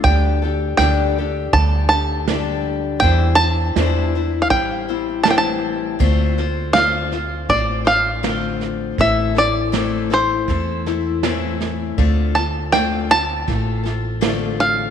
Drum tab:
CC |--------|--------|x-------|--------|
SD |--o---o-|--o---o-|oooooooo|oooooooo|
BD |o---o---|o---o---|o---o---|o---o---|

CC |--------|
SD |oooooooo|
BD |o---o---|